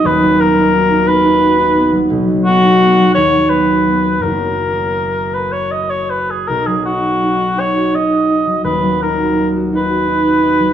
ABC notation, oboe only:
X:1
M:6/8
L:1/16
Q:3/8=56
K:B
V:1 name="Oboe"
B2 A4 B6 | z2 F4 c2 B4 | A6 B c d c B G | A G F4 c2 d4 |
B2 A3 z B6 |]